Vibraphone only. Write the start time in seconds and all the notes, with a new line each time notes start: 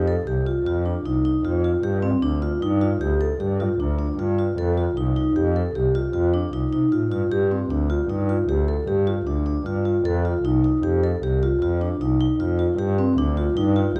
0.08 A4
0.27 G4
0.46 F4
0.66 F4
0.86 D4
1.06 D#4
1.25 D#4
1.45 F4
1.64 F4
1.83 G4
2.02 C4
2.22 D4
2.42 F4
2.62 D#4
2.81 F4
3.01 G4
3.21 A4
3.40 G4
3.60 F4
3.80 D4
3.99 D4
4.19 F4
4.39 F4
4.58 A4
4.77 F4
4.97 D#4
5.16 D#4
5.36 G4
5.56 A4
5.75 G4
5.95 F4
6.13 F4
6.34 D4
6.53 D#4
6.73 D#4
6.92 F4
7.12 F4
7.32 G4
7.51 C4
7.70 D4
7.90 F4
8.10 D#4
8.29 F4
8.49 G4
8.68 A4
8.87 G4
9.07 F4
9.27 D4
9.46 D4
9.66 F4
9.85 F4
10.05 A4
10.25 F4
10.45 D#4
10.64 D#4
10.83 G4
11.04 A4
11.23 G4
11.43 F4
11.62 F4
11.81 D4
12.01 D#4
12.21 D#4
12.40 F4
12.59 F4
12.79 G4
12.98 C4
13.18 D4
13.37 F4
13.57 D#4
13.76 F4
13.96 G4